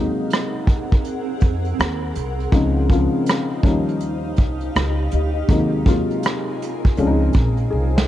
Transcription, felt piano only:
Already playing: C3 F#3 G#3 A#3 D#4
2.52 C#3 F3 G#3 C4 D#4
2.90 C#3 F3 G#3 C4 F4
3.63 F3 G3 A#3 C#4 D#4
5.48 C3 F#3 G#3 A#3 D#4
5.86 C3 F#3 G#3 A#3 F4
6.97 F3 G#3 C4 C#4 D4
7.07 D#4
7.70 G#4
7.96 G#4 C5

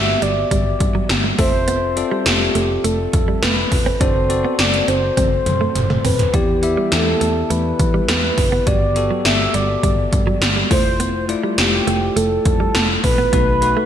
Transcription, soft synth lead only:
Already playing: E5
0.22 D5
1.39 C5
2.27 G4
2.85 A4
3.43 B4
4.01 C5
4.60 D5
4.89 C5
6.05 B4
6.35 G4
6.92 A4
7.50 B4
8.09 B4
8.67 D5
9.26 E5
9.55 D5
10.71 C5
11.58 G4
12.16 A4
12.46 A4
13.04 B4

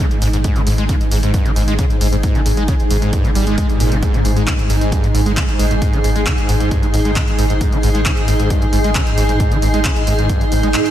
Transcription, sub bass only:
0.22 G#1
0.33 G#1
0.67 G#1
0.78 G#1
1.11 G#1
1.23 G#1
1.56 G#1
1.68 G#1
2.01 G#1
2.13 G#1
2.46 G#1
2.57 G#1
2.91 G#1
3.02 G#1
3.35 G#1
3.47 G#1
3.80 G#1
3.92 G#1
4.25 G#1
4.36 G#1
4.70 G#1
4.81 G#1
5.14 G#1
5.26 G#1
5.59 G#1
5.71 G#1
6.04 G#1
6.16 G#1
6.49 G#1
6.60 G#1
6.94 G#1
7.05 G#1
7.38 G#1
7.50 G#1
7.83 G#1
7.95 G#1
8.28 G#1
8.39 G#1
8.73 G#1
8.84 G#1
9.18 G#1
9.29 G#1
9.62 G#1
9.74 G#1
10.07 G#1
10.19 G#1
10.52 G#1
10.63 G#1

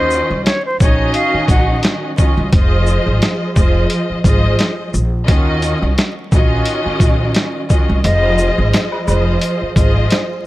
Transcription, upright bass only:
Already playing: D#2
0.31 C2
0.80 A#1
1.34 muted upright bass stroke
1.48 A#1
2.37 C2
2.53 F1
3.06 G#1
3.56 F1
4.10 muted upright bass stroke
4.24 G#1
4.94 A#1
5.28 D#2
5.82 C2
6.32 A#1
6.86 muted upright bass stroke
7.00 A#1
7.89 C2
8.04 F1
8.58 G#1
9.08 F1
9.62 muted upright bass stroke
9.76 G#1

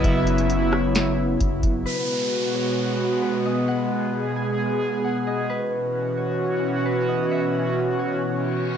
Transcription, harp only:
Already playing: B4 C#5 D#5
0.04 E5
0.72 C#5
1.86 B4
2.54 C#5
3.22 B4
3.45 D#5
3.68 F#5
4.36 G#5
5.04 F#5
5.27 D#5
5.50 B4
6.17 C#5
6.86 B4
7.08 D#5
7.31 E5
7.99 C#5

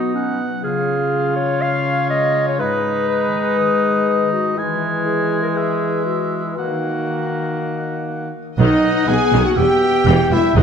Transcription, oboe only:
0.15 F#5
0.64 F5
1.62 C#5
2.60 B4
3.59 D#5
4.10 D#5
4.58 G#5
5.58 E5
6.58 F#5
8.58 F#5
9.57 E5
10.07 G5
10.57 F#5

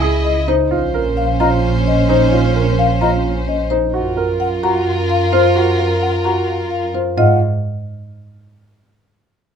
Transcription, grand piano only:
0.01 G#4
0.48 D#4
0.71 F4
0.94 A#4
1.40 F4
2.09 D#4
2.32 F4
2.55 A#4
3.01 F4
3.71 D#4
3.94 F#4
4.17 A#4
4.63 F#4
5.33 F4
5.56 F#4
5.79 A#4
6.25 F#4
6.94 F4
7.17 F4

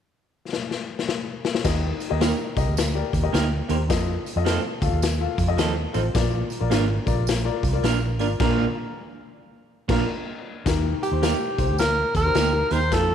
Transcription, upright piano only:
1.64 D#3 G4 A#4 D#5
2.10 G4 A#4 D#5
2.57 G4 A#4 D#5
2.95 G4 A#4 D5
3.23 G4 A#4 D#5
3.69 G4 A#4 C5
3.89 F4 A4 D#5
4.36 F4 A4 D#5
4.82 F4 A4 F5
5.21 F4 A4 F5
5.48 F4 A4 D#5
5.93 F4 A4 C5
6.14 A#2 F4 A#4 D5
6.61 F4 A#4 D5
7.06 F4 A#4 D5
7.45 F4 A#4 D5
7.73 F4 A#4 D5
8.20 F4 A#4 D5
8.40 A#2 F4 A#4
9.89 F4 A#4 D5
10.65 D#3 D#4 G4 A#4
11.12 D#4 G4 C5
11.58 D#4 G4 C5
12.25 D#4 G4 C5
12.53 D#4 G4 A#4
12.91 D#4 F4 A4

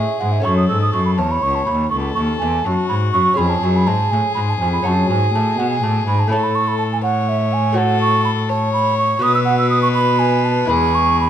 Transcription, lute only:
Already playing: A2 C#4 G#4 C#5
0.21 G#2
0.40 C#4 A4 C#5
0.44 F#2
0.69 G#2
0.93 F#2
1.18 E2
1.67 D#2
2.17 D#2
2.42 E2
2.66 F#2
2.90 G#2
3.15 F#2
3.34 C#4 G#4 C#5
3.39 F2
3.63 F#2
3.88 G#2
4.13 A2
4.37 G#2
4.62 F2
4.82 C#4 F#4 C#5
4.87 F#2
5.11 G#2
5.35 A2
5.59 B2
5.83 A2
6.07 G#2
6.28 A3 E4 C#5
6.32 A2
7.72 A3 F#4 C#5
9.19 B2 F#4 B4
10.65 G#3 E4 B4
10.69 E2

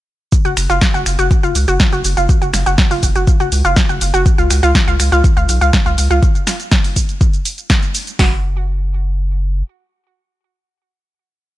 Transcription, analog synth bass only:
0.45 F#1
0.57 F#1
0.70 F#1
0.94 F#1
1.06 F#1
1.19 F#1
1.43 F#1
1.55 C#2
1.68 F#1
1.93 F#1
2.04 F#1
2.17 F#1
2.42 F#1
2.54 F#1
2.66 F#1
2.91 F#1
3.03 F#1
3.16 F#1
3.40 F#1
3.52 C#2
3.65 F#1
3.89 F#1
4.01 F#1
4.14 F#1
4.38 C#2
4.50 C#2
4.63 C#2
4.88 C#2
4.99 C#2
5.12 C#2
5.37 C#2
5.49 B1
5.61 C#2
5.86 C#2
5.98 C#2
6.10 C#2
8.19 F#1

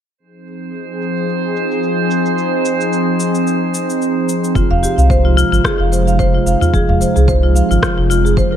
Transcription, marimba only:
4.55 F4
4.71 F5
4.83 G4
4.98 F5
5.10 C5
5.25 F4
5.37 F4
5.52 F4
5.65 G#4
5.80 F5
5.92 C5
6.07 F5
6.19 C5
6.35 F4
6.47 F5
6.61 F4
6.74 G#4
6.89 F5
7.01 C5
7.16 G#4
7.28 C5
7.43 F4
7.55 F5
7.71 F4
7.83 F4
7.98 F4
8.10 F4
8.25 G#4
8.37 C5
8.52 A#4

